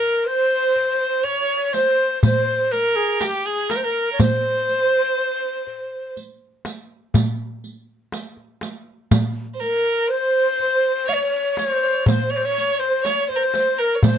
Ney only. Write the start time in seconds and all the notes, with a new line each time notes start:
Already playing: A#4
0.27 C5
1.24 C#5
1.73 C5
2.23 C5
2.72 A#4
2.96 G#4
3.20 G#4
3.25 G4
3.46 G#4
3.70 A#4
3.76 C5
3.84 A#4
4.12 C#5
4.20 C5
9.61 A#4
10.11 C5
11.09 F5
11.13 C#5
11.58 C#5
11.70 C5
12.07 C5 C#5
12.31 C#5
12.37 C5
12.46 C#5
12.79 C5
13.05 C#5
13.21 C#5
13.30 C5
13.80 A#4
14.03 C5